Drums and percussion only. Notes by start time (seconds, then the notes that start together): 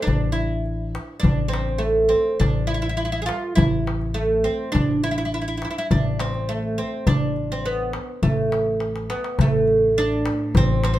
0.08 darbuka dum
0.66 darbuka ka
0.95 darbuka tek
1.24 darbuka dum
1.54 darbuka tek
1.69 darbuka ka
2.12 darbuka ka
2.41 darbuka dum
3.00 darbuka ka
3.29 darbuka tek
3.58 darbuka dum
3.87 darbuka tek
4.01 darbuka ka
4.46 darbuka ka
4.75 darbuka dum
5.32 darbuka ka
5.62 darbuka tek
5.91 darbuka dum
6.20 darbuka tek
6.34 darbuka ka
6.79 darbuka ka
7.07 darbuka dum
7.36 darbuka ka
7.65 darbuka ka
7.80 darbuka ka
7.93 darbuka tek
8.23 darbuka dum
8.52 darbuka tek
8.80 darbuka tek
8.96 darbuka ka
9.10 darbuka tek
9.24 darbuka ka
9.39 darbuka dum
9.67 darbuka ka
10.12 darbuka ka
10.26 darbuka tek
10.55 darbuka dum
10.84 darbuka tek